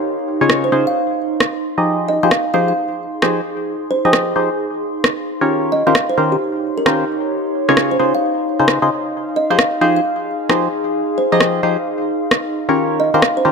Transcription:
Already playing: ambient pad D#4 G4 C#5 F5 C6
0.41 synth stab C#3 D#4 F4 G#4 C#5
0.50 cross-stick
0.64 kalimba C5
0.72 synth stab C#3 D#4 F4 G#4 C5, kalimba C5
0.87 kalimba F5
1.40 cross-stick
1.78 synth stab F3 D#4 G4 G#4 D#5
2.08 kalimba D#5
2.18 ambient pad G#4
2.23 synth stab F3 D#4 G4 G#4 C5, kalimba F5
2.31 cross-stick
2.54 synth stab F3 D#4 G4 G#4 C5, kalimba F5
2.68 kalimba F5
3.22 synth stab F3 D#4 G4 G#4 C5, cross-stick
3.91 kalimba C5
4.05 synth stab F3 D#4 G4 G#4 D#5, kalimba C5
4.13 cross-stick
4.36 synth stab F3 D#4 G4 G#4 C5
5.04 cross-stick
5.41 synth stab D#3 C#4 F4 G4 A#4 C#5
5.49 ambient pad D#4
5.72 ambient pad G4, kalimba D#5
5.87 synth stab D#3 C#4 F4 G4 A#4 C5, kalimba F5
5.95 kalimba F5, cross-stick
6.01 ambient pad C#5
6.10 kalimba C5
6.18 synth stab D#3 C#4 F4 G4 A#4 C5
6.32 kalimba G4
6.78 kalimba A#4
6.86 synth stab D#3 C#4 F4 G4 A#4 C5, cross-stick
7.69 synth stab C#3 D#4 F4 G#4 C#5, cross-stick
7.77 cross-stick
7.91 kalimba C5
7.99 synth stab C#3 D#4 F4 G#4 C5, kalimba C5, ambient pad F5
8.15 kalimba F5
8.59 synth stab C#3 D#4 F4 G#4 C5
8.68 cross-stick
8.82 synth stab C#3 D#4 F4 G#4 C5
9.36 kalimba D#5
9.44 ambient pad G#4
9.50 synth stab F3 D#4 G4 G#4 C5, kalimba F5
9.59 kalimba F5, cross-stick
9.81 synth stab F3 D#4 G4 G#4 C5, kalimba F5
9.96 kalimba F5
10.50 synth stab F3 D#4 G4 G#4 C5, cross-stick
11.18 kalimba C5
11.32 synth stab F3 D#4 G4 G#4 D#5, kalimba C5
11.40 cross-stick
11.63 synth stab F3 D#4 G4 G#4 C5
12.31 cross-stick
12.69 synth stab D#3 C#4 F4 G4 A#4 C#5
12.92 ambient pad G4
13.00 kalimba D#5
13.14 synth stab D#3 C#4 F4 G4 A#4 C5, kalimba F5
13.22 cross-stick
13.31 ambient pad C#5
13.37 kalimba C5
13.45 synth stab D#3 C#4 F4 G4 A#4 C5

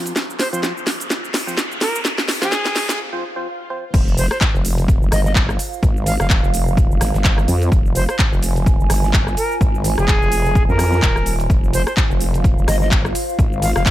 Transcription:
Already playing: synth stab F3 C4 F4 C5, ambient pad F4 C5 F5, riser
0.06 closed hi-hat, shaker
0.16 snare, closed hi-hat, shaker
0.30 shaker
0.39 flute C5, snare, closed hi-hat, open hi-hat
0.53 synth stab F3 C4 F4 C5, flute C5, closed hi-hat, shaker
0.63 snare, closed hi-hat, shaker
0.77 shaker
0.87 snare, closed hi-hat, open hi-hat
1.00 closed hi-hat, shaker
1.10 snare, closed hi-hat, shaker
1.25 shaker
1.34 snare, closed hi-hat, open hi-hat
1.47 synth stab F3 C4 F4 C5, snare, shaker
1.57 snare, closed hi-hat, shaker
1.72 shaker
1.81 flute A#4, snare, closed hi-hat, open hi-hat
1.95 shaker
2.05 snare, closed hi-hat, shaker
2.18 snare, shaker
2.28 snare, closed hi-hat, open hi-hat
2.42 synth stab F3 C4 F4 F5, flute G#4, snare, shaker
2.52 snare, closed hi-hat, shaker
2.65 snare, shaker
2.76 snare, closed hi-hat, open hi-hat
2.89 snare, shaker
2.99 swell
3.13 synth stab F3 C4 F4 C5
3.36 synth stab F3 C4 F4 C5
3.70 synth stab F3 C4 F4 C5
3.94 wobble bass F1, ambient pad F4, kick, closed hi-hat, crash, shaker
4.08 shaker
4.17 flute C5, closed hi-hat, open hi-hat, shaker
4.31 flute C5, cross-stick, closed hi-hat, shaker
4.41 ambient pad F5, kick, snare, clap, closed hi-hat, shaker
4.54 wobble bass F1, shaker
4.62 ambient pad C5, closed hi-hat, open hi-hat, shaker
4.78 closed hi-hat, shaker
4.88 kick, closed hi-hat, shaker
5.02 wobble bass F1, shaker
5.12 wobble bass G1, flute D#5, cross-stick, snare, closed hi-hat, open hi-hat, shaker
5.25 flute D#5, snare, shaker
5.36 kick, snare, clap, closed hi-hat, shaker
5.49 cross-stick, shaker
5.59 closed hi-hat, open hi-hat, shaker
5.73 shaker
5.83 wobble bass G#1, kick, closed hi-hat, shaker
5.97 shaker
6.06 flute F5, snare, closed hi-hat, open hi-hat, shaker
6.20 wobble bass F1, flute F5, cross-stick, snare, shaker
6.30 kick, snare, clap, closed hi-hat, shaker
6.43 wobble bass F1, shaker
6.54 closed hi-hat, open hi-hat, shaker
6.68 shaker
6.77 kick, closed hi-hat, shaker
6.91 wobble bass F1, shaker
7.01 wobble bass G#1, cross-stick, snare, closed hi-hat, open hi-hat, shaker
7.14 wobble bass G1, snare, shaker
7.24 kick, snare, clap, closed hi-hat, shaker
7.38 cross-stick, shaker
7.48 wobble bass F2, closed hi-hat, open hi-hat, shaker
7.62 closed hi-hat, shaker
7.72 wobble bass F1, kick, closed hi-hat, shaker
7.86 shaker
7.95 flute C5, closed hi-hat, open hi-hat, shaker
8.09 flute C5, cross-stick, closed hi-hat, shaker
8.19 ambient pad G#5, kick, snare, clap, closed hi-hat, shaker
8.32 wobble bass F1, shaker
8.42 closed hi-hat, open hi-hat, shaker
8.56 closed hi-hat, shaker
8.66 kick, closed hi-hat, shaker
8.80 wobble bass F1, shaker
8.90 wobble bass G1, cross-stick, snare, closed hi-hat, open hi-hat, shaker
9.03 snare, shaker
9.14 kick, snare, clap, closed hi-hat, shaker
9.27 cross-stick, shaker
9.37 flute A#4, closed hi-hat, open hi-hat, shaker
9.51 shaker
9.61 wobble bass G#1, kick, closed hi-hat, shaker
9.75 shaker
9.84 snare, closed hi-hat, open hi-hat, shaker
9.98 wobble bass F1, flute G#4, cross-stick, snare, shaker
10.08 kick, snare, clap, closed hi-hat, shaker
10.21 wobble bass F1, shaker
10.32 closed hi-hat, open hi-hat, shaker
10.46 shaker
10.55 kick, closed hi-hat, shaker
10.69 wobble bass F2, flute A#4, shaker
10.79 cross-stick, snare, closed hi-hat, open hi-hat, shaker
10.92 snare, shaker
11.02 wobble bass D#1, kick, snare, clap, closed hi-hat, shaker
11.16 cross-stick, shaker
11.26 closed hi-hat, open hi-hat, shaker
11.40 closed hi-hat, shaker
11.50 wobble bass F1, kick, closed hi-hat, shaker
11.64 shaker
11.73 flute C5, closed hi-hat, open hi-hat, shaker
11.87 flute C5, cross-stick, closed hi-hat, shaker
11.97 ambient pad F5, kick, snare, clap, closed hi-hat, shaker
12.10 wobble bass F1, shaker
12.21 closed hi-hat, open hi-hat, shaker
12.34 closed hi-hat, shaker
12.44 kick, closed hi-hat, shaker
12.58 wobble bass F1, shaker
12.68 wobble bass G1, flute D#5, cross-stick, snare, closed hi-hat, open hi-hat, shaker
12.81 flute D#5, snare, shaker
12.91 kick, snare, clap, closed hi-hat, shaker
13.05 cross-stick, shaker
13.15 closed hi-hat, open hi-hat, shaker
13.29 shaker
13.39 wobble bass G#1, kick, closed hi-hat, shaker
13.53 shaker
13.62 flute F5, snare, closed hi-hat, open hi-hat, shaker
13.76 wobble bass F1, flute F5, cross-stick, snare, shaker
13.86 kick, snare, clap, closed hi-hat, shaker

